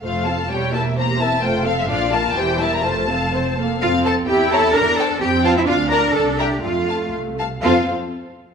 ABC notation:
X:1
M:2/4
L:1/16
Q:1/4=128
K:F
V:1 name="Violin section"
f2 a2 g2 a2 | b2 a2 g2 f e | f2 a2 g2 a b | a6 z2 |
f2 a2 g2 a2 | b2 a2 g2 f e | f2 b2 a2 g2 | f4 z4 |
f2 z6 |]
V:2 name="Violin section"
[Fc]2 [Af]2 [G^c]2 [Be]2 | c2 [Be]2 c2 [Af]2 | [Fd]2 [Bf]2 c2 [Be]2 | c2 [Af]2 c2 [Af]2 |
z2 [ca]2 z2 [^cb]2 | z2 [cg]2 z2 [ca]2 | z2 [da]2 z2 [eb]2 | z2 [fa]2 z2 [fa]2 |
[Ac]2 z6 |]
V:3 name="Cello section"
F,,4 E,,4- | E,,4 F,,4 | B,,4 E,,4 | F,,6 z2 |
F2 A2 G2 A2 | B2 A2 G2 F E | F2 B2 A2 G2 | F4 z4 |
F2 z6 |]
V:4 name="Viola section"
[A,A]2 [CF]2 [G,G]2 [B,E]2 | [B,G]2 [CE]2 [A,F]2 [CA]2 | [F,D]2 [B,F]2 [E,G]2 [G,E]2 | [A,F]2 [CA]2 C2 B,2 |
C4 E4 | D4 C4 | D8 | A,6 z2 |
[CF]2 z6 |]
V:5 name="Double bass section" clef=bass
F,,,4 E,,,4- | E,,,4 F,,,4 | B,,,4 E,,,4 | F,,,6 z2 |
F,,4 E,,4 | E,,4 F,,4 | D,,4 C,,4 | F,,4 C,,4 |
F,,2 z6 |]